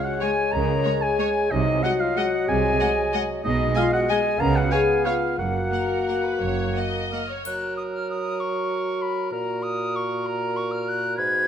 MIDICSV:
0, 0, Header, 1, 12, 480
1, 0, Start_track
1, 0, Tempo, 326087
1, 785, Time_signature, 3, 2, 24, 8
1, 3192, Tempo, 317797
1, 7032, Tempo, 343840
1, 10872, Tempo, 309278
1, 17101, End_track
2, 0, Start_track
2, 0, Title_t, "Flute"
2, 0, Program_c, 0, 73
2, 53, Note_on_c, 0, 78, 59
2, 291, Note_off_c, 0, 78, 0
2, 300, Note_on_c, 0, 80, 63
2, 756, Note_on_c, 0, 82, 66
2, 778, Note_off_c, 0, 80, 0
2, 1501, Note_on_c, 0, 80, 60
2, 1523, Note_off_c, 0, 82, 0
2, 2217, Note_on_c, 0, 75, 66
2, 2239, Note_off_c, 0, 80, 0
2, 2692, Note_on_c, 0, 78, 70
2, 2714, Note_off_c, 0, 75, 0
2, 2935, Note_on_c, 0, 77, 61
2, 2957, Note_off_c, 0, 78, 0
2, 3188, Note_on_c, 0, 78, 68
2, 3210, Note_off_c, 0, 77, 0
2, 3671, Note_on_c, 0, 80, 71
2, 3693, Note_off_c, 0, 78, 0
2, 4884, Note_off_c, 0, 80, 0
2, 5142, Note_on_c, 0, 75, 64
2, 5572, Note_off_c, 0, 75, 0
2, 5593, Note_on_c, 0, 77, 73
2, 5835, Note_off_c, 0, 77, 0
2, 5870, Note_on_c, 0, 78, 61
2, 6103, Note_on_c, 0, 80, 63
2, 6126, Note_off_c, 0, 78, 0
2, 6563, Note_on_c, 0, 82, 73
2, 6586, Note_off_c, 0, 80, 0
2, 6825, Note_on_c, 0, 78, 64
2, 6847, Note_off_c, 0, 82, 0
2, 7044, Note_on_c, 0, 80, 69
2, 7065, Note_off_c, 0, 78, 0
2, 7498, Note_off_c, 0, 80, 0
2, 7506, Note_on_c, 0, 77, 56
2, 7954, Note_off_c, 0, 77, 0
2, 7962, Note_on_c, 0, 78, 51
2, 9978, Note_off_c, 0, 78, 0
2, 10393, Note_on_c, 0, 89, 50
2, 10835, Note_off_c, 0, 89, 0
2, 10867, Note_on_c, 0, 90, 58
2, 11340, Note_off_c, 0, 90, 0
2, 11349, Note_on_c, 0, 87, 54
2, 11442, Note_off_c, 0, 87, 0
2, 11605, Note_on_c, 0, 89, 52
2, 11857, Note_off_c, 0, 89, 0
2, 11866, Note_on_c, 0, 87, 56
2, 12328, Note_on_c, 0, 85, 48
2, 12351, Note_off_c, 0, 87, 0
2, 13287, Note_on_c, 0, 83, 50
2, 13310, Note_off_c, 0, 85, 0
2, 13744, Note_off_c, 0, 83, 0
2, 13754, Note_on_c, 0, 82, 60
2, 14230, Note_on_c, 0, 87, 62
2, 14253, Note_off_c, 0, 82, 0
2, 14745, Note_on_c, 0, 85, 49
2, 14768, Note_off_c, 0, 87, 0
2, 15217, Note_on_c, 0, 82, 56
2, 15241, Note_off_c, 0, 85, 0
2, 15688, Note_on_c, 0, 85, 56
2, 15711, Note_off_c, 0, 82, 0
2, 15920, Note_on_c, 0, 89, 58
2, 15943, Note_off_c, 0, 85, 0
2, 16182, Note_on_c, 0, 90, 65
2, 16205, Note_off_c, 0, 89, 0
2, 16619, Note_off_c, 0, 90, 0
2, 16629, Note_on_c, 0, 92, 80
2, 17101, Note_off_c, 0, 92, 0
2, 17101, End_track
3, 0, Start_track
3, 0, Title_t, "Oboe"
3, 0, Program_c, 1, 68
3, 63, Note_on_c, 1, 78, 58
3, 321, Note_on_c, 1, 80, 68
3, 343, Note_off_c, 1, 78, 0
3, 778, Note_on_c, 1, 82, 68
3, 800, Note_off_c, 1, 80, 0
3, 1494, Note_on_c, 1, 80, 68
3, 1516, Note_off_c, 1, 82, 0
3, 2229, Note_on_c, 1, 75, 65
3, 2251, Note_off_c, 1, 80, 0
3, 2696, Note_on_c, 1, 78, 58
3, 2718, Note_off_c, 1, 75, 0
3, 2951, Note_on_c, 1, 77, 65
3, 2973, Note_off_c, 1, 78, 0
3, 3197, Note_on_c, 1, 78, 65
3, 3220, Note_off_c, 1, 77, 0
3, 3656, Note_off_c, 1, 78, 0
3, 3665, Note_on_c, 1, 80, 75
3, 4857, Note_off_c, 1, 80, 0
3, 5118, Note_on_c, 1, 75, 72
3, 5607, Note_on_c, 1, 77, 66
3, 5630, Note_off_c, 1, 75, 0
3, 5844, Note_off_c, 1, 77, 0
3, 5853, Note_on_c, 1, 78, 67
3, 5960, Note_off_c, 1, 78, 0
3, 6109, Note_on_c, 1, 80, 65
3, 6568, Note_on_c, 1, 82, 80
3, 6591, Note_off_c, 1, 80, 0
3, 6795, Note_on_c, 1, 78, 68
3, 6818, Note_off_c, 1, 82, 0
3, 7037, Note_on_c, 1, 80, 57
3, 7058, Note_off_c, 1, 78, 0
3, 7510, Note_on_c, 1, 77, 58
3, 7531, Note_off_c, 1, 80, 0
3, 7965, Note_off_c, 1, 77, 0
3, 7972, Note_on_c, 1, 78, 60
3, 10356, Note_off_c, 1, 78, 0
3, 10859, Note_on_c, 1, 70, 46
3, 13699, Note_off_c, 1, 70, 0
3, 13763, Note_on_c, 1, 70, 48
3, 16642, Note_on_c, 1, 71, 48
3, 16666, Note_off_c, 1, 70, 0
3, 17101, Note_off_c, 1, 71, 0
3, 17101, End_track
4, 0, Start_track
4, 0, Title_t, "Violin section"
4, 0, Program_c, 2, 48
4, 313, Note_on_c, 2, 73, 49
4, 431, Note_off_c, 2, 73, 0
4, 1251, Note_on_c, 2, 73, 47
4, 1369, Note_off_c, 2, 73, 0
4, 1752, Note_on_c, 2, 73, 45
4, 1870, Note_off_c, 2, 73, 0
4, 2713, Note_on_c, 2, 78, 45
4, 2831, Note_off_c, 2, 78, 0
4, 3207, Note_on_c, 2, 78, 49
4, 3328, Note_off_c, 2, 78, 0
4, 4148, Note_on_c, 2, 78, 56
4, 4269, Note_off_c, 2, 78, 0
4, 4652, Note_on_c, 2, 78, 53
4, 4773, Note_off_c, 2, 78, 0
4, 5580, Note_on_c, 2, 80, 57
4, 5701, Note_off_c, 2, 80, 0
4, 6093, Note_on_c, 2, 80, 46
4, 6214, Note_off_c, 2, 80, 0
4, 7037, Note_on_c, 2, 77, 50
4, 7148, Note_off_c, 2, 77, 0
4, 7518, Note_on_c, 2, 77, 37
4, 7630, Note_off_c, 2, 77, 0
4, 8454, Note_on_c, 2, 78, 38
4, 8566, Note_off_c, 2, 78, 0
4, 8942, Note_on_c, 2, 78, 32
4, 9054, Note_off_c, 2, 78, 0
4, 9895, Note_on_c, 2, 78, 32
4, 10007, Note_off_c, 2, 78, 0
4, 10411, Note_on_c, 2, 78, 30
4, 10522, Note_off_c, 2, 78, 0
4, 17101, End_track
5, 0, Start_track
5, 0, Title_t, "Clarinet"
5, 0, Program_c, 3, 71
5, 0, Note_on_c, 3, 73, 58
5, 2229, Note_on_c, 3, 75, 54
5, 2251, Note_off_c, 3, 73, 0
5, 5110, Note_off_c, 3, 75, 0
5, 5119, Note_on_c, 3, 75, 60
5, 6547, Note_on_c, 3, 77, 56
5, 6569, Note_off_c, 3, 75, 0
5, 7975, Note_on_c, 3, 78, 42
5, 7996, Note_off_c, 3, 77, 0
5, 10652, Note_off_c, 3, 78, 0
5, 10876, Note_on_c, 3, 66, 43
5, 13708, Note_off_c, 3, 66, 0
5, 13751, Note_on_c, 3, 66, 42
5, 16578, Note_off_c, 3, 66, 0
5, 16635, Note_on_c, 3, 66, 47
5, 17101, Note_off_c, 3, 66, 0
5, 17101, End_track
6, 0, Start_track
6, 0, Title_t, "Violin section"
6, 0, Program_c, 4, 48
6, 308, Note_on_c, 4, 73, 43
6, 426, Note_off_c, 4, 73, 0
6, 1249, Note_on_c, 4, 73, 45
6, 1367, Note_off_c, 4, 73, 0
6, 1768, Note_on_c, 4, 73, 51
6, 1885, Note_off_c, 4, 73, 0
6, 2718, Note_on_c, 4, 75, 46
6, 2836, Note_off_c, 4, 75, 0
6, 3203, Note_on_c, 4, 75, 49
6, 3324, Note_off_c, 4, 75, 0
6, 4156, Note_on_c, 4, 75, 51
6, 4277, Note_off_c, 4, 75, 0
6, 4652, Note_on_c, 4, 75, 58
6, 4773, Note_off_c, 4, 75, 0
6, 5595, Note_on_c, 4, 75, 45
6, 5715, Note_off_c, 4, 75, 0
6, 6102, Note_on_c, 4, 75, 52
6, 6222, Note_off_c, 4, 75, 0
6, 7053, Note_on_c, 4, 73, 46
6, 7164, Note_off_c, 4, 73, 0
6, 7511, Note_on_c, 4, 73, 47
6, 7622, Note_off_c, 4, 73, 0
6, 8441, Note_on_c, 4, 70, 43
6, 9132, Note_off_c, 4, 70, 0
6, 9169, Note_on_c, 4, 71, 41
6, 9387, Note_on_c, 4, 73, 45
6, 9409, Note_off_c, 4, 71, 0
6, 9881, Note_off_c, 4, 73, 0
6, 9890, Note_on_c, 4, 75, 44
6, 10644, Note_off_c, 4, 75, 0
6, 10647, Note_on_c, 4, 73, 39
6, 10872, Note_off_c, 4, 73, 0
6, 17101, End_track
7, 0, Start_track
7, 0, Title_t, "French horn section"
7, 0, Program_c, 5, 60
7, 90, Note_on_c, 5, 66, 67
7, 297, Note_on_c, 5, 68, 71
7, 327, Note_off_c, 5, 66, 0
7, 773, Note_off_c, 5, 68, 0
7, 777, Note_on_c, 5, 70, 82
7, 1503, Note_off_c, 5, 70, 0
7, 1518, Note_on_c, 5, 68, 70
7, 2222, Note_on_c, 5, 63, 71
7, 2228, Note_off_c, 5, 68, 0
7, 2687, Note_off_c, 5, 63, 0
7, 2700, Note_on_c, 5, 66, 80
7, 2947, Note_off_c, 5, 66, 0
7, 2959, Note_on_c, 5, 65, 72
7, 3190, Note_on_c, 5, 66, 70
7, 3197, Note_off_c, 5, 65, 0
7, 3650, Note_on_c, 5, 68, 83
7, 3664, Note_off_c, 5, 66, 0
7, 4874, Note_off_c, 5, 68, 0
7, 5107, Note_on_c, 5, 63, 81
7, 5554, Note_off_c, 5, 63, 0
7, 5619, Note_on_c, 5, 65, 93
7, 5841, Note_on_c, 5, 66, 81
7, 5853, Note_off_c, 5, 65, 0
7, 6084, Note_off_c, 5, 66, 0
7, 6105, Note_on_c, 5, 68, 72
7, 6526, Note_on_c, 5, 70, 84
7, 6561, Note_off_c, 5, 68, 0
7, 6771, Note_off_c, 5, 70, 0
7, 6802, Note_on_c, 5, 66, 70
7, 7036, Note_off_c, 5, 66, 0
7, 7050, Note_on_c, 5, 68, 80
7, 7504, Note_on_c, 5, 65, 66
7, 7505, Note_off_c, 5, 68, 0
7, 7962, Note_off_c, 5, 65, 0
7, 7968, Note_on_c, 5, 66, 60
7, 10403, Note_off_c, 5, 66, 0
7, 17101, End_track
8, 0, Start_track
8, 0, Title_t, "Viola section"
8, 0, Program_c, 6, 48
8, 323, Note_on_c, 6, 56, 47
8, 440, Note_off_c, 6, 56, 0
8, 1251, Note_on_c, 6, 56, 48
8, 1369, Note_off_c, 6, 56, 0
8, 1740, Note_on_c, 6, 56, 50
8, 1858, Note_off_c, 6, 56, 0
8, 2689, Note_on_c, 6, 56, 50
8, 2807, Note_off_c, 6, 56, 0
8, 3186, Note_on_c, 6, 56, 48
8, 3306, Note_off_c, 6, 56, 0
8, 4155, Note_on_c, 6, 56, 52
8, 4276, Note_off_c, 6, 56, 0
8, 4646, Note_on_c, 6, 56, 53
8, 4767, Note_off_c, 6, 56, 0
8, 5596, Note_on_c, 6, 56, 57
8, 5717, Note_off_c, 6, 56, 0
8, 6094, Note_on_c, 6, 56, 53
8, 6214, Note_off_c, 6, 56, 0
8, 7042, Note_on_c, 6, 59, 46
8, 7153, Note_off_c, 6, 59, 0
8, 7504, Note_on_c, 6, 59, 42
8, 7616, Note_off_c, 6, 59, 0
8, 8433, Note_on_c, 6, 58, 36
8, 8545, Note_off_c, 6, 58, 0
8, 8951, Note_on_c, 6, 58, 35
8, 9063, Note_off_c, 6, 58, 0
8, 9901, Note_on_c, 6, 58, 32
8, 10013, Note_off_c, 6, 58, 0
8, 10403, Note_on_c, 6, 58, 34
8, 10515, Note_off_c, 6, 58, 0
8, 17101, End_track
9, 0, Start_track
9, 0, Title_t, "Bassoon"
9, 0, Program_c, 7, 70
9, 0, Note_on_c, 7, 56, 57
9, 2171, Note_off_c, 7, 56, 0
9, 2228, Note_on_c, 7, 54, 63
9, 5056, Note_off_c, 7, 54, 0
9, 5140, Note_on_c, 7, 56, 65
9, 6572, Note_on_c, 7, 59, 62
9, 6594, Note_off_c, 7, 56, 0
9, 7965, Note_off_c, 7, 59, 0
9, 7973, Note_on_c, 7, 58, 49
9, 10598, Note_off_c, 7, 58, 0
9, 10880, Note_on_c, 7, 54, 51
9, 13757, Note_on_c, 7, 46, 47
9, 13780, Note_off_c, 7, 54, 0
9, 16638, Note_off_c, 7, 46, 0
9, 16652, Note_on_c, 7, 44, 54
9, 17101, Note_off_c, 7, 44, 0
9, 17101, End_track
10, 0, Start_track
10, 0, Title_t, "Cello section"
10, 0, Program_c, 8, 48
10, 795, Note_on_c, 8, 49, 62
10, 1180, Note_off_c, 8, 49, 0
10, 2228, Note_on_c, 8, 48, 59
10, 2617, Note_off_c, 8, 48, 0
10, 3671, Note_on_c, 8, 48, 62
10, 4060, Note_off_c, 8, 48, 0
10, 5126, Note_on_c, 8, 47, 70
10, 5514, Note_off_c, 8, 47, 0
10, 6556, Note_on_c, 8, 49, 66
10, 6950, Note_off_c, 8, 49, 0
10, 7973, Note_on_c, 8, 42, 45
10, 8362, Note_off_c, 8, 42, 0
10, 9412, Note_on_c, 8, 42, 44
10, 9810, Note_off_c, 8, 42, 0
10, 17101, End_track
11, 0, Start_track
11, 0, Title_t, "Double bass section"
11, 0, Program_c, 10, 48
11, 801, Note_on_c, 10, 37, 62
11, 1182, Note_off_c, 10, 37, 0
11, 2234, Note_on_c, 10, 36, 60
11, 2620, Note_off_c, 10, 36, 0
11, 3684, Note_on_c, 10, 36, 62
11, 4067, Note_off_c, 10, 36, 0
11, 5139, Note_on_c, 10, 35, 62
11, 5520, Note_off_c, 10, 35, 0
11, 6578, Note_on_c, 10, 37, 64
11, 6961, Note_off_c, 10, 37, 0
11, 7971, Note_on_c, 10, 30, 45
11, 8361, Note_off_c, 10, 30, 0
11, 9427, Note_on_c, 10, 30, 44
11, 9818, Note_off_c, 10, 30, 0
11, 17101, End_track
12, 0, Start_track
12, 0, Title_t, "Drums"
12, 10858, Note_on_c, 9, 81, 29
12, 11012, Note_off_c, 9, 81, 0
12, 17101, End_track
0, 0, End_of_file